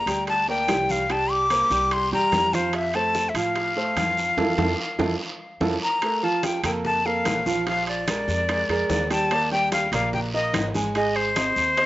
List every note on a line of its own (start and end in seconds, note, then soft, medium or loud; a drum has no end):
0.00 0.24 A#5 loud
0.06 0.64 D2 medium
0.06 0.41 G3 medium
0.06 0.41 G4 medium
0.06 0.41 G5 medium
0.06 high timbale medium
0.06 short guiro medium
0.27 0.47 A5 medium
0.27 high bongo medium
0.27 high conga soft
0.27 high timbale medium
0.27 long guiro medium
0.48 0.65 A#3 medium
0.48 0.65 A#4 medium
0.48 0.65 D5 medium
0.48 0.93 G5 loud
0.48 high bongo soft
0.48 high conga soft
0.68 1.65 C2 medium
0.68 1.02 G3 medium
0.68 1.02 G4 medium
0.68 1.02 G5 medium
0.68 high bongo soft
0.68 low bongo medium
0.68 high conga medium
0.68 high timbale medium
0.68 low timbale medium
0.68 short guiro medium
0.89 1.13 F5 medium
0.89 high conga medium
0.89 short guiro medium
1.10 1.43 G3 medium
1.10 1.43 G4 medium
1.10 1.44 G5 medium
1.10 1.33 A5 medium
1.10 high bongo medium
1.10 high timbale medium
1.10 long guiro medium
1.30 1.94 D6 loud
1.30 high bongo soft
1.30 high conga soft
1.50 1.67 A#3 medium
1.50 1.68 A#4 medium
1.50 1.68 C5 medium
1.50 high bongo medium
1.50 high conga medium
1.50 high timbale medium
1.50 low timbale medium
1.50 short guiro medium
1.70 2.09 C2 loud
1.70 2.05 G3 medium
1.70 2.05 G4 medium
1.70 2.05 G5 medium
1.70 high conga soft
1.70 short guiro medium
1.91 2.13 C6 loud
1.91 high bongo medium
1.91 high conga soft
1.91 high timbale medium
1.91 long guiro medium
2.12 2.31 E2 medium
2.12 2.46 G3 medium
2.12 2.46 G4 medium
2.12 2.46 G5 medium
2.12 2.56 A#5 loud
2.12 high bongo soft
2.12 high conga soft
2.32 3.29 F2 medium
2.32 high bongo soft
2.32 low bongo medium
2.32 high conga medium
2.32 high timbale medium
2.32 low timbale medium
2.32 short guiro medium
2.53 2.87 F3 medium
2.53 2.87 F4 medium
2.53 2.76 C5 medium
2.53 2.87 F5 medium
2.53 high conga medium
2.53 short guiro medium
2.73 2.97 E5 loud
2.73 high bongo medium
2.73 high conga soft
2.73 high timbale medium
2.73 long guiro medium
2.94 3.28 A3 medium
2.94 3.29 A4 medium
2.94 3.29 C5 medium
2.94 3.31 A5 loud
2.94 high bongo soft
2.94 high conga soft
2.94 high timbale medium
3.15 high bongo medium
3.15 high conga medium
3.15 low timbale medium
3.15 short guiro medium
3.29 3.38 E5 medium
3.34 3.92 A2 loud
3.34 3.69 F3 medium
3.34 3.69 F4 medium
3.34 3.70 F5 medium
3.34 5.62 F5 loud
3.34 high timbale medium
3.34 short guiro medium
3.56 high bongo medium
3.56 high conga soft
3.56 high timbale medium
3.56 long guiro medium
3.76 3.93 A3 medium
3.76 3.93 A4 medium
3.76 3.94 C5 medium
3.76 high bongo soft
3.76 high conga soft
3.96 4.35 F2 medium
3.96 4.30 F3 medium
3.96 4.31 F4 medium
3.96 4.31 F5 medium
3.96 high bongo soft
3.96 low bongo medium
3.96 high conga medium
3.96 high timbale medium
3.96 low timbale medium
3.96 short guiro medium
4.17 short guiro medium
4.37 4.53 F2 medium
4.37 4.51 E4 medium
4.37 4.51 F4 medium
4.37 4.51 A4 medium
4.37 low bongo loud
4.37 high conga loud
4.37 high timbale loud
4.37 long guiro loud
4.58 4.73 F2 medium
4.58 4.71 E4 medium
4.58 4.71 F4 medium
4.58 4.71 A4 medium
4.58 low bongo medium
4.58 high conga medium
4.58 high timbale medium
4.58 long guiro medium
4.98 5.14 F2 medium
4.98 5.12 E4 medium
4.98 5.12 F4 medium
4.98 5.12 A4 medium
4.98 low bongo medium
4.98 high conga medium
4.98 high timbale loud
4.98 long guiro medium
5.60 5.76 F2 medium
5.60 5.74 E4 medium
5.60 5.74 F4 medium
5.60 5.74 A4 medium
5.60 low bongo medium
5.60 high conga medium
5.60 high timbale medium
5.60 long guiro medium
5.83 6.26 A#5 medium
6.02 6.19 A3 medium
6.02 6.19 A4 medium
6.02 6.20 A#4 medium
6.02 high bongo medium
6.02 high conga soft
6.02 high timbale medium
6.02 long guiro medium
6.23 6.57 F3 medium
6.23 6.57 F4 medium
6.23 6.57 F5 medium
6.23 6.46 A5 medium
6.23 high bongo soft
6.23 high conga soft
6.43 6.64 G5 medium
6.43 high bongo medium
6.43 high conga loud
6.43 high timbale medium
6.43 short guiro medium
6.63 7.21 F2 loud
6.63 6.98 A#3 medium
6.63 6.98 A4 medium
6.63 6.98 A#4 medium
6.63 6.71 G5 medium
6.63 high conga soft
6.63 low conga medium
6.63 high timbale loud
6.63 short guiro medium
6.85 7.08 A5 medium
6.85 high bongo medium
6.85 high conga soft
6.85 low conga medium
6.85 long guiro medium
7.05 7.39 A#3 medium
7.05 7.39 A4 medium
7.05 7.39 A#4 medium
7.05 7.67 F5 medium
7.05 high bongo soft
7.05 high conga soft
7.25 8.22 A#1 medium
7.25 high bongo medium
7.25 low bongo medium
7.25 high conga medium
7.25 high timbale medium
7.25 low timbale medium
7.25 short guiro medium
7.46 7.63 F3 medium
7.46 7.63 F4 medium
7.46 7.63 F5 medium
7.46 high bongo soft
7.46 high conga medium
7.46 short guiro medium
7.67 8.00 F3 medium
7.67 8.00 F4 medium
7.67 8.01 F5 medium
7.67 7.87 F5 medium
7.67 high bongo medium
7.67 high timbale medium
7.67 long guiro medium
7.87 9.13 D5 loud
7.87 high conga soft
7.87 high timbale medium
8.08 8.41 G#3 medium
8.08 8.41 G#4 medium
8.08 8.42 A#4 medium
8.08 high bongo medium
8.08 high conga loud
8.08 high timbale medium
8.08 short guiro medium
8.28 8.66 F2 loud
8.28 high bongo soft
8.28 high conga soft
8.28 short guiro medium
8.49 8.66 G#3 medium
8.49 8.66 G#4 medium
8.49 8.66 A#4 medium
8.49 high bongo medium
8.49 high conga soft
8.49 high timbale medium
8.49 long guiro medium
8.69 8.88 F2 medium
8.69 9.03 G#3 medium
8.69 9.03 G#4 medium
8.69 9.04 A#4 medium
8.69 high bongo soft
8.69 high conga soft
8.69 high timbale medium
8.89 9.86 D#2 medium
8.89 high bongo medium
8.89 low bongo medium
8.89 high conga medium
8.89 low timbale medium
8.89 short guiro medium
9.10 9.27 G3 medium
9.10 9.27 G4 medium
9.10 9.27 G5 medium
9.10 9.52 A5 loud
9.10 high bongo soft
9.10 high timbale medium
9.10 short guiro medium
9.31 9.48 A#3 medium
9.31 9.48 A#4 medium
9.31 9.48 D5 medium
9.31 high bongo medium
9.31 high conga soft
9.31 high timbale medium
9.31 long guiro medium
9.51 9.85 G3 medium
9.51 9.85 G4 medium
9.51 9.86 G5 medium
9.51 9.71 G5 medium
9.51 high bongo soft
9.51 high conga soft
9.72 9.91 F5 medium
9.72 high bongo medium
9.72 high conga medium
9.72 high timbale medium
9.72 short guiro medium
9.92 10.50 A#1 loud
9.92 10.26 A#3 medium
9.92 10.26 A#4 medium
9.92 10.27 D5 medium
9.92 10.12 F5 medium
9.92 high conga soft
9.92 low conga medium
9.92 high timbale loud
9.92 short guiro medium
10.13 10.20 G5 loud
10.13 high bongo medium
10.13 high conga soft
10.13 low conga medium
10.13 long guiro medium
10.34 10.67 A#3 medium
10.34 10.68 A#4 medium
10.34 10.68 D#5 medium
10.34 10.66 D#5 medium
10.34 high bongo soft
10.34 high conga soft
10.53 11.50 G#1 medium
10.53 high bongo medium
10.53 low bongo medium
10.53 high conga medium
10.53 high timbale medium
10.53 short guiro medium
10.74 10.92 G#3 medium
10.74 10.92 G#4 medium
10.74 10.92 G#5 medium
10.74 high bongo soft
10.74 high conga medium
10.74 short guiro medium
10.95 11.29 G#3 medium
10.95 11.29 G#4 medium
10.95 11.17 D#5 medium
10.95 11.30 G#5 medium
10.95 high bongo medium
10.95 high conga soft
10.95 high timbale medium
10.95 long guiro medium
11.16 11.86 C5 loud
11.16 high conga soft
11.16 high timbale medium
11.36 11.70 C4 medium
11.36 11.70 C5 medium
11.36 11.70 D#5 medium
11.36 high bongo medium
11.36 high conga loud
11.36 high timbale medium
11.36 short guiro medium
11.56 11.86 D#2 loud
11.56 high bongo soft
11.56 high conga soft
11.56 short guiro medium
11.77 11.86 C4 medium
11.77 11.86 C5 medium
11.77 11.86 D#5 medium
11.77 high bongo medium
11.77 high conga soft
11.77 high timbale medium
11.77 long guiro medium